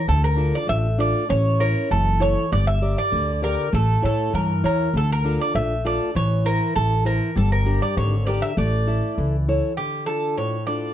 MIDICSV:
0, 0, Header, 1, 4, 480
1, 0, Start_track
1, 0, Key_signature, -1, "minor"
1, 0, Tempo, 606061
1, 61, Time_signature, 2, 2, 24, 8
1, 8662, End_track
2, 0, Start_track
2, 0, Title_t, "Bouzouki"
2, 0, Program_c, 0, 25
2, 68, Note_on_c, 0, 69, 90
2, 177, Note_off_c, 0, 69, 0
2, 190, Note_on_c, 0, 70, 81
2, 436, Note_off_c, 0, 70, 0
2, 437, Note_on_c, 0, 74, 79
2, 544, Note_off_c, 0, 74, 0
2, 547, Note_on_c, 0, 76, 98
2, 790, Note_off_c, 0, 76, 0
2, 793, Note_on_c, 0, 74, 78
2, 1015, Note_off_c, 0, 74, 0
2, 1029, Note_on_c, 0, 73, 91
2, 1269, Note_on_c, 0, 70, 90
2, 1278, Note_off_c, 0, 73, 0
2, 1512, Note_off_c, 0, 70, 0
2, 1515, Note_on_c, 0, 69, 86
2, 1757, Note_on_c, 0, 73, 89
2, 1762, Note_off_c, 0, 69, 0
2, 1979, Note_off_c, 0, 73, 0
2, 2000, Note_on_c, 0, 74, 101
2, 2113, Note_off_c, 0, 74, 0
2, 2117, Note_on_c, 0, 76, 87
2, 2340, Note_off_c, 0, 76, 0
2, 2362, Note_on_c, 0, 74, 84
2, 2695, Note_off_c, 0, 74, 0
2, 2722, Note_on_c, 0, 70, 74
2, 2962, Note_off_c, 0, 70, 0
2, 2966, Note_on_c, 0, 69, 78
2, 3200, Note_off_c, 0, 69, 0
2, 3210, Note_on_c, 0, 69, 78
2, 3440, Note_off_c, 0, 69, 0
2, 3443, Note_on_c, 0, 70, 74
2, 3677, Note_off_c, 0, 70, 0
2, 3686, Note_on_c, 0, 70, 74
2, 3929, Note_off_c, 0, 70, 0
2, 3938, Note_on_c, 0, 69, 76
2, 4040, Note_off_c, 0, 69, 0
2, 4058, Note_on_c, 0, 70, 79
2, 4271, Note_off_c, 0, 70, 0
2, 4288, Note_on_c, 0, 74, 74
2, 4395, Note_off_c, 0, 74, 0
2, 4398, Note_on_c, 0, 76, 91
2, 4641, Note_off_c, 0, 76, 0
2, 4644, Note_on_c, 0, 74, 79
2, 4863, Note_off_c, 0, 74, 0
2, 4881, Note_on_c, 0, 73, 94
2, 5115, Note_on_c, 0, 70, 78
2, 5125, Note_off_c, 0, 73, 0
2, 5338, Note_off_c, 0, 70, 0
2, 5351, Note_on_c, 0, 69, 84
2, 5575, Note_off_c, 0, 69, 0
2, 5593, Note_on_c, 0, 70, 79
2, 5836, Note_off_c, 0, 70, 0
2, 5839, Note_on_c, 0, 69, 73
2, 5947, Note_off_c, 0, 69, 0
2, 5956, Note_on_c, 0, 70, 79
2, 6176, Note_off_c, 0, 70, 0
2, 6194, Note_on_c, 0, 74, 79
2, 6303, Note_off_c, 0, 74, 0
2, 6313, Note_on_c, 0, 73, 79
2, 6534, Note_off_c, 0, 73, 0
2, 6547, Note_on_c, 0, 74, 74
2, 6659, Note_off_c, 0, 74, 0
2, 6669, Note_on_c, 0, 76, 82
2, 6780, Note_off_c, 0, 76, 0
2, 6795, Note_on_c, 0, 74, 79
2, 7476, Note_off_c, 0, 74, 0
2, 7739, Note_on_c, 0, 67, 76
2, 7962, Note_off_c, 0, 67, 0
2, 7970, Note_on_c, 0, 69, 81
2, 8197, Note_off_c, 0, 69, 0
2, 8217, Note_on_c, 0, 73, 75
2, 8440, Note_off_c, 0, 73, 0
2, 8448, Note_on_c, 0, 74, 84
2, 8662, Note_off_c, 0, 74, 0
2, 8662, End_track
3, 0, Start_track
3, 0, Title_t, "Steel-string acoustic guitar"
3, 0, Program_c, 1, 25
3, 59, Note_on_c, 1, 50, 66
3, 289, Note_on_c, 1, 62, 45
3, 295, Note_on_c, 1, 65, 42
3, 300, Note_on_c, 1, 69, 50
3, 528, Note_off_c, 1, 50, 0
3, 531, Note_on_c, 1, 57, 64
3, 682, Note_off_c, 1, 62, 0
3, 685, Note_off_c, 1, 65, 0
3, 689, Note_off_c, 1, 69, 0
3, 779, Note_on_c, 1, 62, 55
3, 782, Note_on_c, 1, 65, 52
3, 787, Note_on_c, 1, 69, 60
3, 976, Note_off_c, 1, 62, 0
3, 978, Note_off_c, 1, 65, 0
3, 980, Note_off_c, 1, 69, 0
3, 1007, Note_off_c, 1, 57, 0
3, 1023, Note_on_c, 1, 61, 70
3, 1267, Note_on_c, 1, 64, 49
3, 1273, Note_on_c, 1, 73, 53
3, 1495, Note_off_c, 1, 61, 0
3, 1508, Note_on_c, 1, 52, 69
3, 1655, Note_off_c, 1, 64, 0
3, 1658, Note_off_c, 1, 73, 0
3, 1742, Note_on_c, 1, 64, 54
3, 1747, Note_on_c, 1, 69, 51
3, 1750, Note_on_c, 1, 73, 64
3, 1940, Note_off_c, 1, 64, 0
3, 1941, Note_off_c, 1, 69, 0
3, 1944, Note_off_c, 1, 73, 0
3, 1978, Note_off_c, 1, 52, 0
3, 1993, Note_on_c, 1, 55, 67
3, 2229, Note_off_c, 1, 55, 0
3, 2232, Note_on_c, 1, 67, 45
3, 2236, Note_on_c, 1, 70, 40
3, 2237, Note_on_c, 1, 74, 53
3, 2471, Note_on_c, 1, 50, 73
3, 2619, Note_off_c, 1, 67, 0
3, 2620, Note_off_c, 1, 70, 0
3, 2621, Note_off_c, 1, 74, 0
3, 2711, Note_on_c, 1, 67, 50
3, 2716, Note_on_c, 1, 70, 49
3, 2716, Note_on_c, 1, 74, 57
3, 2906, Note_off_c, 1, 67, 0
3, 2908, Note_off_c, 1, 70, 0
3, 2909, Note_off_c, 1, 74, 0
3, 2940, Note_off_c, 1, 50, 0
3, 2951, Note_on_c, 1, 57, 68
3, 3188, Note_on_c, 1, 64, 49
3, 3195, Note_on_c, 1, 73, 50
3, 3420, Note_off_c, 1, 57, 0
3, 3431, Note_on_c, 1, 52, 68
3, 3576, Note_off_c, 1, 64, 0
3, 3580, Note_off_c, 1, 73, 0
3, 3672, Note_on_c, 1, 64, 52
3, 3677, Note_on_c, 1, 73, 61
3, 3866, Note_off_c, 1, 64, 0
3, 3869, Note_off_c, 1, 73, 0
3, 3900, Note_off_c, 1, 52, 0
3, 3923, Note_on_c, 1, 50, 68
3, 4155, Note_on_c, 1, 62, 48
3, 4161, Note_on_c, 1, 65, 43
3, 4164, Note_on_c, 1, 69, 56
3, 4385, Note_off_c, 1, 50, 0
3, 4398, Note_on_c, 1, 57, 73
3, 4539, Note_off_c, 1, 62, 0
3, 4543, Note_off_c, 1, 65, 0
3, 4545, Note_off_c, 1, 69, 0
3, 4630, Note_on_c, 1, 62, 54
3, 4634, Note_on_c, 1, 65, 55
3, 4638, Note_on_c, 1, 69, 59
3, 4824, Note_off_c, 1, 62, 0
3, 4826, Note_off_c, 1, 65, 0
3, 4829, Note_off_c, 1, 69, 0
3, 4862, Note_off_c, 1, 57, 0
3, 4870, Note_on_c, 1, 52, 74
3, 5109, Note_on_c, 1, 64, 52
3, 5117, Note_on_c, 1, 72, 52
3, 5337, Note_off_c, 1, 52, 0
3, 5357, Note_on_c, 1, 52, 71
3, 5494, Note_off_c, 1, 64, 0
3, 5499, Note_off_c, 1, 72, 0
3, 5584, Note_on_c, 1, 64, 49
3, 5592, Note_on_c, 1, 72, 59
3, 5779, Note_off_c, 1, 64, 0
3, 5783, Note_off_c, 1, 72, 0
3, 5820, Note_off_c, 1, 52, 0
3, 5825, Note_on_c, 1, 55, 62
3, 6065, Note_on_c, 1, 62, 44
3, 6070, Note_on_c, 1, 67, 41
3, 6070, Note_on_c, 1, 70, 51
3, 6292, Note_off_c, 1, 55, 0
3, 6316, Note_on_c, 1, 50, 67
3, 6450, Note_off_c, 1, 62, 0
3, 6451, Note_off_c, 1, 67, 0
3, 6452, Note_off_c, 1, 70, 0
3, 6554, Note_on_c, 1, 62, 53
3, 6558, Note_on_c, 1, 67, 53
3, 6561, Note_on_c, 1, 70, 66
3, 6744, Note_off_c, 1, 62, 0
3, 6744, Note_off_c, 1, 67, 0
3, 6747, Note_off_c, 1, 70, 0
3, 6776, Note_off_c, 1, 50, 0
3, 6789, Note_on_c, 1, 57, 73
3, 7026, Note_on_c, 1, 64, 42
3, 7031, Note_on_c, 1, 69, 37
3, 7034, Note_on_c, 1, 76, 50
3, 7251, Note_off_c, 1, 57, 0
3, 7270, Note_on_c, 1, 52, 70
3, 7408, Note_off_c, 1, 64, 0
3, 7411, Note_off_c, 1, 69, 0
3, 7413, Note_off_c, 1, 76, 0
3, 7512, Note_on_c, 1, 64, 49
3, 7513, Note_on_c, 1, 69, 50
3, 7516, Note_on_c, 1, 73, 61
3, 7699, Note_off_c, 1, 69, 0
3, 7700, Note_off_c, 1, 64, 0
3, 7702, Note_off_c, 1, 73, 0
3, 7730, Note_off_c, 1, 52, 0
3, 7747, Note_on_c, 1, 50, 62
3, 7979, Note_on_c, 1, 62, 36
3, 7984, Note_on_c, 1, 65, 35
3, 7989, Note_on_c, 1, 69, 38
3, 8208, Note_off_c, 1, 50, 0
3, 8219, Note_on_c, 1, 45, 65
3, 8362, Note_off_c, 1, 62, 0
3, 8364, Note_off_c, 1, 65, 0
3, 8367, Note_off_c, 1, 69, 0
3, 8455, Note_on_c, 1, 62, 47
3, 8459, Note_on_c, 1, 65, 43
3, 8462, Note_on_c, 1, 69, 54
3, 8647, Note_off_c, 1, 62, 0
3, 8649, Note_off_c, 1, 65, 0
3, 8651, Note_off_c, 1, 69, 0
3, 8662, Note_off_c, 1, 45, 0
3, 8662, End_track
4, 0, Start_track
4, 0, Title_t, "Upright bass"
4, 0, Program_c, 2, 32
4, 65, Note_on_c, 2, 38, 108
4, 403, Note_off_c, 2, 38, 0
4, 549, Note_on_c, 2, 33, 91
4, 887, Note_off_c, 2, 33, 0
4, 1030, Note_on_c, 2, 33, 99
4, 1368, Note_off_c, 2, 33, 0
4, 1511, Note_on_c, 2, 30, 95
4, 1849, Note_off_c, 2, 30, 0
4, 1995, Note_on_c, 2, 31, 103
4, 2332, Note_off_c, 2, 31, 0
4, 2474, Note_on_c, 2, 38, 86
4, 2812, Note_off_c, 2, 38, 0
4, 2954, Note_on_c, 2, 33, 107
4, 3123, Note_off_c, 2, 33, 0
4, 3199, Note_on_c, 2, 45, 73
4, 3415, Note_off_c, 2, 45, 0
4, 3435, Note_on_c, 2, 43, 86
4, 3652, Note_off_c, 2, 43, 0
4, 3673, Note_on_c, 2, 40, 76
4, 3891, Note_off_c, 2, 40, 0
4, 3909, Note_on_c, 2, 38, 98
4, 4248, Note_off_c, 2, 38, 0
4, 4394, Note_on_c, 2, 34, 89
4, 4730, Note_off_c, 2, 34, 0
4, 4876, Note_on_c, 2, 33, 100
4, 5211, Note_off_c, 2, 33, 0
4, 5355, Note_on_c, 2, 33, 95
4, 5689, Note_off_c, 2, 33, 0
4, 5831, Note_on_c, 2, 31, 101
4, 6166, Note_off_c, 2, 31, 0
4, 6311, Note_on_c, 2, 32, 93
4, 6645, Note_off_c, 2, 32, 0
4, 6788, Note_on_c, 2, 33, 97
4, 7122, Note_off_c, 2, 33, 0
4, 7268, Note_on_c, 2, 37, 85
4, 7601, Note_off_c, 2, 37, 0
4, 8662, End_track
0, 0, End_of_file